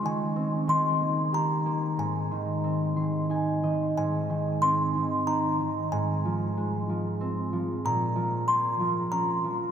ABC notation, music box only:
X:1
M:3/4
L:1/8
Q:1/4=93
K:Ab
V:1 name="Music box"
a2 c'2 b2 | a4- a z | a2 c'2 b2 | a4- a z |
b2 c'2 b2 |]